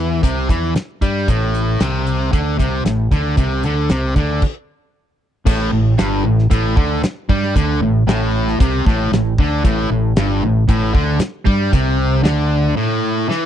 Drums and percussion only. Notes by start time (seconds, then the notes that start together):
0.23 kick, closed hi-hat
0.49 kick, closed hi-hat
0.76 snare, closed hi-hat
1.02 kick, closed hi-hat
1.28 kick, closed hi-hat
1.54 closed hi-hat
1.80 snare, closed hi-hat
2.07 closed hi-hat
2.33 kick, closed hi-hat
2.59 kick, closed hi-hat
2.86 snare, closed hi-hat
3.11 kick, closed hi-hat
3.37 kick, closed hi-hat
3.63 closed hi-hat
3.89 snare, closed hi-hat
4.16 kick, snare, closed hi-hat
4.42 kick, crash
5.47 kick, crash
5.99 snare, closed hi-hat
6.39 snare
6.51 kick, closed hi-hat
6.77 kick
7.03 snare, closed hi-hat
7.29 kick
7.43 snare
7.56 kick, closed hi-hat
8.09 snare, closed hi-hat
8.48 snare
8.60 kick, closed hi-hat
8.86 kick, snare
9.13 snare, closed hi-hat
9.38 kick
9.65 kick, closed hi-hat
10.16 snare, closed hi-hat
10.69 kick, closed hi-hat
10.95 kick
11.20 snare, closed hi-hat
11.47 kick
11.73 kick, closed hi-hat
12.25 snare, closed hi-hat
13.31 snare